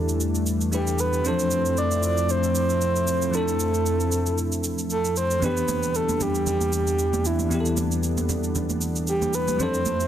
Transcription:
Already playing: E2 E3 G3 A3 D4 E4 G4 A4
0.09 shaker
0.21 shaker
0.35 shaker
0.47 shaker
0.61 shaker
0.71 G3 D4 E4 G4 B4, shaker
0.87 shaker
0.99 B4, shaker
1.13 shaker
1.22 F2 E3 F3 C4 D4 E4 C5, shaker
1.28 F3 A4
1.39 shaker
1.51 shaker
1.65 shaker
1.77 D5, shaker
1.91 shaker
2.03 D5, shaker
2.17 shaker
2.29 C5, shaker
2.44 shaker
2.55 C5, shaker
2.70 shaker
2.81 shaker
2.96 shaker
3.08 shaker
3.22 shaker
3.31 F3 C4 D4 A4, shaker
3.37 A4
3.48 shaker
3.60 shaker
3.74 shaker
3.86 shaker
4.00 shaker
4.12 shaker
4.26 shaker
4.38 shaker
4.52 shaker
4.64 shaker
4.78 shaker
4.90 A4, shaker
5.05 shaker
5.16 C5, shaker
5.31 shaker
5.40 E2 E3 G3 B3 D4 B4, low conga, shaker
5.46 G4
5.57 shaker
5.68 high conga, shaker
5.83 shaker
5.95 A4, shaker
6.09 high conga, shaker
6.20 G4, low conga, shaker
6.35 shaker
6.47 G4, low conga, shaker
6.61 high conga, shaker
6.73 G4, shaker
6.87 shaker
6.99 shaker
7.13 high conga, shaker
7.25 E4, shaker
7.39 high conga, shaker
7.48 E3 B3 D4, low conga, shaker
7.54 G4
7.60 A4
7.66 shaker
7.77 high conga, shaker
7.92 shaker
8.03 shaker
8.17 high conga, shaker
8.29 low conga, shaker
8.44 shaker
8.55 low conga, shaker
8.70 high conga, shaker
8.81 shaker
8.96 shaker
9.07 G4, shaker
9.22 high conga, shaker
9.34 B4, shaker
9.48 high conga, shaker
9.57 F2 F3 A3 C4 D4 E4 C5, low conga, shaker
9.63 A4
9.74 shaker
9.86 high conga, shaker
10.00 shaker

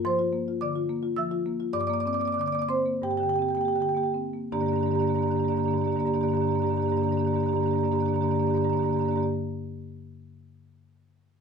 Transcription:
Already playing: G2 F4
0.05 F3 C5 C6
0.19 F4
0.33 A#3
0.48 F4
0.61 D3 D5 D6
0.76 F4
0.89 A#3
1.03 F4
1.17 F3 E5 E6
1.31 F4
1.46 A#3
1.60 F4
1.73 G2 D5 D6
1.80 D5 D6
1.87 A#3 D5 D6
1.93 D5 D6
2.00 D5 D6
2.06 C4 D5 D6
2.13 D5 D6
2.20 A#3 D5 D6
2.25 D5 D6
2.33 D5 D6
2.37 D3 D5 D6
2.46 D5 D6
2.52 A#3 D5 D6
2.59 D5 D6
2.68 C4 C5 C6
2.86 A#3
3.02 G2 G4 G5
3.11 G4 G5
3.17 D3 G4 G5
3.23 G4 G5
3.29 G5
3.34 G4 G5
3.39 C4 G4 G5
3.49 G4 G5
3.55 A#3 G4 G5
3.61 G5
3.65 G4 G5
3.73 D3 G4 G5
3.80 G4 G5
3.89 G4 G5
3.95 A#3 G4 G5
4.03 G4 G5
4.14 C4
4.33 A#3
4.52 G2 D3 A#3 D4 G4 D5 A#5
4.59 G2 D3 A#3 D4 G4 D5 A#5
4.66 A#3 D4 G4 D5 A#5
4.72 G2 D3 G4 D5 A#5
4.76 A#3 D4
4.80 G2 D3 D4 G4 D5 A#5
4.86 A#3 G4 A#5
4.91 G2 D3 A#3 D4 D5
4.95 G4 A#5
4.99 D3 A#3 D4 G4 D5 A#5
5.04 G2 D4 D5 A#5
5.09 D3 A#3 G4
5.14 G2 D4 G4 D5 A#5
5.19 D3 A#3 D5 A#5
5.23 G2 D4 G4
5.28 D3 A#3 G4 D5 A#5
5.32 G2 D4 A#5
5.37 D3 A#3 D4 G4 D5
5.43 G2 A#3 G4 A#5
5.48 D3 A#3 D4 G4 D5 A#5
5.54 G2 D4 D5 A#5
5.59 D3 A#3 G4
5.63 G2 D4 G4 D5 A#5
5.68 D3 A#3 D5 A#5
5.73 G2 A#3 D4 G4
5.78 D3 D4 G4 D5 A#5
5.84 G2 D3 A#3 G4 D5 A#5
5.90 A#3 D4 D5 A#5
5.94 G2 D3 D4 G4
5.99 A#3 G4 D5 A#5
6.05 G2 D3 A#3 D4 G4 D5 A#5
6.14 G2 D3 A#3 D4 G4 D5 A#5
6.21 G2 D3 A#3 D4 G4 D5 A#5
6.28 D4 G4 D5 A#5
6.32 G2 D3 A#3 G4 A#5
6.37 A#3 D4 D5 A#5
6.41 G2 D3 D4 G4 D5
6.47 A#3 G4 D5 A#5
6.52 G2 D3 A#3 D4 G4 A#5
6.59 D3 D4 D5 A#5
6.63 G2 A#3 G4 D5
6.69 D3 A#3 D4 G4 A#5
6.74 G2 D4 G4 D5 A#5
6.79 G2 D3 A#3 D5 A#5
6.84 D3 A#3 D4 G4
6.89 G2 G4 D5 A#5
6.94 D3 A#3 D4 D5 A#5
6.99 G2 D4 G4
7.03 A#3 G4 D5 A#5
7.08 D3 D4 A#5
7.12 G2 A#3 G4 D5
7.16 D3 A#3 D4 D5 A#5
7.21 G2 D4 G4 A#5
7.27 D3 A#3 G4 D5
7.31 G2 D4 D5 A#5
7.35 D3 A#3 G4 A#5
7.40 G2 A#3 D4 G4 D5
7.46 D3 D4 G4 D5 A#5
7.52 G2 D3 A#3 D5 A#5
7.56 D4 G4
7.60 G2 A#3 G4 D5 A#5
7.65 D3 A#3 D4 A#5
7.71 G2 D3 D4 G4 D5 A#5
7.76 A#3 G4 D5
7.81 G2 D3 A#3 D4 A#5
7.85 G4 D5 A#5
7.91 G2 D3 A#3 D4 G4 D5
7.95 D4 G4 A#5
8.00 G2 D3 A#3 D5 A#5
8.05 A#3 D4 G4 D5 A#5
8.13 G2 D3 A#3 D4 G4 D5 A#5
8.21 G2 D3 A#3 D4 G4 D5 A#5
8.28 D3 A#3 D4 G4 D5 A#5
8.34 G2 G4 A#5
8.39 D3 A#3 D4 G4 D5 A#5
8.45 G2 A#3 D4 D5
8.50 G2 D3 G4 A#5
8.54 A#3 D4 G4 D5 A#5
8.61 D3 A#3 G4 D5 A#5
8.65 G2 D4
8.69 D3 A#3 D4 G4 D5 A#5
8.75 G2 D5 A#5
8.79 D3 A#3 D4 G4
8.83 G2 G4 D5 A#5
8.88 D3 A#3 D4 A#5
8.93 G2 G4 D5
8.97 D3 A#3 D4 A#5
9.01 A#3 G4 D5
9.06 G2 D3 D4 D5 A#5
9.11 A#3 G4 A#5
9.16 G2 D3 D4 G4 D5 A#5
9.20 A#3 G4 D5

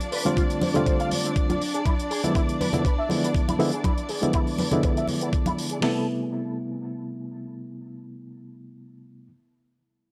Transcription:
Already playing: D4 D5
0.01 closed hi-hat
0.12 B4, open hi-hat
0.25 D3 G3 A3 C4 F4, closed hi-hat, high conga
0.37 F4, kick, closed hi-hat
0.50 closed hi-hat
0.61 C5, open hi-hat, high conga
0.74 D3 G3 A3 C4 F4, closed hi-hat, low conga
0.86 C5, kick, closed hi-hat
1.00 F5, closed hi-hat
1.11 open hi-hat, high conga
1.25 C4, closed hi-hat
1.36 kick, closed hi-hat
1.49 F4, closed hi-hat, high conga
1.62 open hi-hat
1.74 G#4, closed hi-hat
1.86 E4, kick, closed hi-hat, high conga
1.99 closed hi-hat
2.11 G#4, open hi-hat
2.23 D3 F3 G#3 B3 E4, closed hi-hat, high conga
2.35 E4, kick, closed hi-hat
2.49 closed hi-hat
2.60 B4, open hi-hat, high conga
2.73 D3 F3 G#3 B3 E4, closed hi-hat, low conga
2.85 B4, kick, closed hi-hat
2.99 E5
3.09 D3 F3 G#3 B3 E4, open hi-hat, high conga
3.23 B3, closed hi-hat
3.35 kick, closed hi-hat
3.48 E4, closed hi-hat, high conga
3.59 D3 F3 G#3 B3 E4, open hi-hat
3.73 G#4, closed hi-hat
3.84 E4, kick, closed hi-hat, high conga
3.98 closed hi-hat
4.09 G#4, open hi-hat
4.22 D3 F3 G#3 B3 E4, closed hi-hat, high conga
4.33 E4, kick, closed hi-hat
4.47 open hi-hat
4.58 B4, open hi-hat, high conga
4.71 D3 F3 G#3 B3 E4, closed hi-hat, low conga
4.83 B4, kick, closed hi-hat
4.97 E5, closed hi-hat
5.07 open hi-hat, high conga
5.21 B3, closed hi-hat
5.33 kick, closed hi-hat
5.46 E4, closed hi-hat, high conga
5.58 open hi-hat
5.70 G#4, closed hi-hat
5.81 C3 G3 A3 B3 E4 A4, snare, open hi-hat

